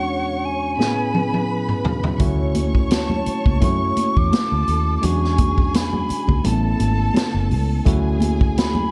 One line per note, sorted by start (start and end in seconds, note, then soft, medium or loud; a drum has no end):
0.00 0.23 E2 medium
0.00 0.23 G#3 medium
0.00 0.23 C#4 medium
0.00 0.24 D4 medium
0.00 0.27 F#4 medium
0.00 0.76 C#5 medium
0.00 0.47 F#5 medium
0.00 0.76 C#6 medium
0.45 1.86 G#5 medium
0.77 1.64 A2 medium
0.77 1.64 B3 medium
0.77 1.65 C#4 medium
0.77 1.65 E4 medium
0.77 1.65 G#4 medium
0.77 2.18 B4 medium
0.77 2.18 B5 medium
0.77 snare medium
1.14 high tom medium
1.34 high tom medium
1.69 mid tom medium
1.85 floor tom medium
2.03 floor tom medium
2.19 3.22 D2 medium
2.19 3.06 A3 medium
2.19 3.06 C#4 medium
2.19 3.07 E4 medium
2.19 3.07 F#4 medium
2.19 4.29 C#5 medium
2.19 4.29 C#6 medium
2.19 kick loud
2.19 closed hi-hat medium
2.19 muted conga soft
2.19 low conga medium
2.55 closed hi-hat medium
2.55 muted conga soft
2.55 high conga medium
2.75 kick medium
2.91 3.58 A5 medium
2.91 snare loud
2.91 closed hi-hat medium
2.91 muted conga soft
3.10 high conga medium
3.10 low conga medium
3.26 muted fingered electric bass stroke soft
3.26 closed hi-hat medium
3.46 3.64 C#2 medium
3.46 kick medium
3.46 high conga medium
3.60 3.91 F#2 medium
3.60 4.47 A3 medium
3.60 4.48 C#4 medium
3.60 4.48 E4 medium
3.60 4.48 F#4 medium
3.60 4.19 C#6 medium
3.60 kick medium
3.60 closed hi-hat medium
3.60 low conga medium
3.97 closed hi-hat medium
3.97 muted conga soft
3.97 high conga soft
4.17 4.30 E2 medium
4.17 4.97 D6 loud
4.17 kick medium
4.33 5.02 A4 medium
4.33 5.02 A5 medium
4.33 snare medium
4.33 closed hi-hat medium
4.33 muted conga soft
4.33 high conga medium
4.52 4.65 D2 medium
4.68 4.96 D#2 medium
4.68 closed hi-hat medium
4.98 5.06 D6 medium
5.02 6.06 E2 loud
5.02 5.89 G#3 medium
5.02 5.89 C#4 medium
5.02 5.89 D4 medium
5.02 5.90 F#4 medium
5.02 6.42 G#4 medium
5.02 6.42 G#5 medium
5.02 5.78 C#6 medium
5.02 closed hi-hat medium
5.02 muted conga soft
5.02 low conga medium
5.24 snare soft
5.38 kick medium
5.38 closed hi-hat medium
5.38 muted conga soft
5.38 high conga medium
5.58 kick medium
5.74 6.47 B5 medium
5.74 snare loud
5.74 closed hi-hat medium
5.93 high conga medium
5.93 low conga medium
6.09 muted fingered electric bass stroke soft
6.09 closed hi-hat medium
6.09 muted conga soft
6.28 6.42 C#2 medium
6.28 kick medium
6.28 high conga medium
6.44 6.73 A1 medium
6.44 7.30 A3 medium
6.44 7.31 B3 medium
6.44 6.52 C4 soft
6.44 7.32 E4 medium
6.44 7.84 A4 medium
6.44 7.84 A5 medium
6.44 7.51 A5 medium
6.44 closed hi-hat medium
6.44 muted conga soft
6.44 low conga medium
6.52 7.34 C#4 medium
6.79 7.09 G#1 medium
6.79 closed hi-hat medium
6.79 high conga soft
7.14 snare loud
7.14 closed hi-hat medium
7.14 high conga medium
7.34 7.53 F#1 medium
7.51 7.80 C#2 medium
7.51 open hi-hat soft
7.51 muted conga soft
7.85 8.88 D2 medium
7.85 8.72 A3 medium
7.85 8.72 C#4 medium
7.85 8.73 E4 medium
7.85 8.73 F#4 medium
7.85 8.91 G#4 medium
7.85 8.91 G#5 medium
7.85 kick medium
7.85 closed hi-hat medium
7.85 low conga medium
8.20 closed hi-hat medium
8.20 muted conga soft
8.20 high conga medium
8.41 kick medium
8.58 8.91 B5 medium
8.58 snare loud
8.58 closed hi-hat medium
8.75 high conga medium
8.75 low conga medium